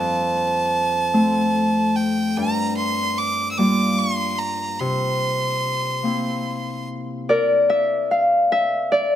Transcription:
Already playing: F2 A#3 F4 A5
1.13 A3 C4 F4
1.96 G5
2.37 G2 A#5
2.77 C6
3.18 D6
3.51 E6
3.58 G3 A#3 F4 D6
3.99 C6
4.38 A#5
4.79 C3 C6
6.03 A#3 C4 E4
7.29 A#4 D5
7.70 E5
8.11 F5
8.52 E5
8.92 D5

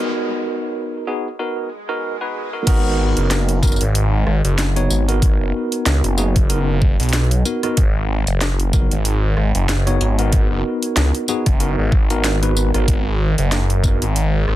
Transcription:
Already playing: B3 D#4 F#4 G#4 A#4 F#5 A#5, riser
1.07 B3 D#4 F#4 G#4
1.39 B3 D#4 F#4 A#4, swell
1.89 B3 D#4 F#4 A#4
2.21 B3 D#4 F#4 B4
2.53 B3 D#4 F#4 A#4
2.67 G#1 B3 D#4 F#4 A#4, kick, closed hi-hat, crash
3.14 F#1 A#4, closed hi-hat
3.31 snare, closed hi-hat
3.49 closed hi-hat
3.63 B3 D#4 F#4 A#4, kick, tambourine
3.67 tambourine
3.72 tambourine
3.76 tambourine
3.81 G#1, closed hi-hat
3.95 closed hi-hat
4.27 G#1, cross-stick
4.44 F#1, closed hi-hat
4.58 snare, closed hi-hat
4.76 B3 D#4 F#4 C#5, closed hi-hat
4.90 G#1, tambourine
5.08 B3 D#4 F#4 A#4, closed hi-hat
5.22 kick, closed hi-hat
5.40 F#1
5.72 closed hi-hat
5.86 C#2, snare, closed hi-hat
6.04 F#1, closed hi-hat
6.18 B3 D#4 F#4 G#4, tambourine
6.36 kick, closed hi-hat
6.50 B3 D#4 F#4 A#4, closed hi-hat
6.82 kick
7.00 B1, closed hi-hat
7.03 closed hi-hat
7.09 closed hi-hat
7.13 snare, closed hi-hat
7.19 closed hi-hat
7.24 closed hi-hat
7.31 closed hi-hat
7.45 B3 D#4 F#4 A#4, tambourine
7.63 B3 D#4 F#4 A#4, cross-stick, closed hi-hat
7.77 G#1, kick, closed hi-hat
8.27 F#1, closed hi-hat
8.41 snare, closed hi-hat
8.60 closed hi-hat
8.73 B3 D#4 F#4 A#4, kick, tambourine
8.91 G#1, closed hi-hat
9.05 closed hi-hat
9.37 G#1, cross-stick
9.55 F#1, closed hi-hat
9.69 snare, closed hi-hat
9.87 B3 D#4 F#4 C#5, closed hi-hat
10.01 G#1, tambourine
10.19 B3 D#4 F#4 A#4, closed hi-hat
10.32 kick, closed hi-hat
10.51 F#1
10.82 closed hi-hat
10.97 C#2, snare, closed hi-hat
11.15 closed hi-hat
11.28 B3 D#4 F#4 G#4, tambourine
11.46 F#1, kick, cross-stick, closed hi-hat
11.60 B3 D#4 F#4 A#4, closed hi-hat
11.78 G#1
11.92 kick
12.10 B3 D#4 F#4 A#4, closed hi-hat
12.24 snare, closed hi-hat
12.43 B3 D#4 F#4 B4, closed hi-hat
12.57 tambourine
12.74 G#1 B3 D#4 F#4 A#4, cross-stick, closed hi-hat
12.88 G#1, kick, closed hi-hat
13.38 F#1, closed hi-hat
13.52 snare, closed hi-hat
13.70 closed hi-hat
13.84 B3 D#4 F#4 A#4, kick, tambourine
14.02 G#1, closed hi-hat
14.16 closed hi-hat
14.48 G#1, cross-stick

